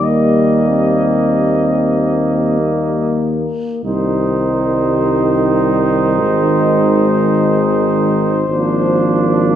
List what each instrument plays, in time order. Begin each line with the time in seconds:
Already playing: tuba D#2, euphonium G3
0.01 flugelhorn A#3, euphonium A#3, cornet D#5
0.69 euphonium C4
2.60 euphonium A#3
3.84 tuba C2, euphonium D#3 G3, flugelhorn D#4, cornet C5
6.19 tuba G#1, euphonium G#3
8.49 tuba G#1, euphonium F3 A#3, flugelhorn D4